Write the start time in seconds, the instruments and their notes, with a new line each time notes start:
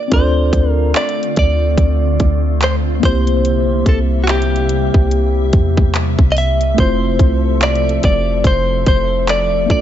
Already playing: clean electric guitar D5
0.08 808-style bass D2, ambient pad D3 A3 C4 F4, tine electric piano C4 D4 F4, kick, closed hi-hat
0.13 tine electric piano A4 D5, clean electric guitar C5
0.53 808-style bass D2, kick, closed hi-hat
0.70 clean electric guitar A#4
0.95 clean electric guitar D5, clap, closed hi-hat
1.09 closed hi-hat
1.23 closed hi-hat
1.36 808-style bass D2, clean electric guitar D5, kick, closed hi-hat
1.78 808-style bass D2, kick, closed hi-hat
2.20 808-style bass D2, kick, closed hi-hat
2.62 clean electric guitar C5, clap, closed hi-hat
3.00 808-style bass C2, ambient pad G3 A#3 E5, tine electric piano A#3 C4 E4, kick, closed hi-hat
3.04 ambient pad C3, tine electric piano G4 C5, clean electric guitar C5
3.27 closed hi-hat
3.45 closed hi-hat
3.86 808-style bass C2, clean electric guitar A4, kick, closed hi-hat
4.24 clean electric guitar F#4
4.28 clean electric guitar G4, clap, closed hi-hat
4.42 closed hi-hat
4.56 closed hi-hat
4.69 closed hi-hat
4.94 808-style bass C2, kick
5.11 closed hi-hat
5.53 808-style bass E2, kick, closed hi-hat
5.77 kick
5.95 clap, closed hi-hat
6.19 808-style bass C2, kick
6.32 clean electric guitar D#5
6.37 clean electric guitar E5, closed hi-hat, open hi-hat
6.61 closed hi-hat
6.74 tine electric piano A3 C4 E4, closed hi-hat
6.78 808-style bass F1, ambient pad F3 A4, tine electric piano F4 C5, clean electric guitar C5, kick
7.19 808-style bass C2, kick, closed hi-hat
7.62 clean electric guitar D5, clap, closed hi-hat
7.75 closed hi-hat
7.89 closed hi-hat
8.03 808-style bass F1, clean electric guitar D5, kick, closed hi-hat
8.44 808-style bass F1, clean electric guitar C5, kick, closed hi-hat
8.86 808-style bass F1, clean electric guitar C5, kick, closed hi-hat
9.28 clean electric guitar D5, clap, closed hi-hat
9.66 ambient pad D3 A#3 F4, tine electric piano A#3 D4 F4
9.70 808-style bass A#1, tine electric piano A4 D5, clean electric guitar D5, kick, closed hi-hat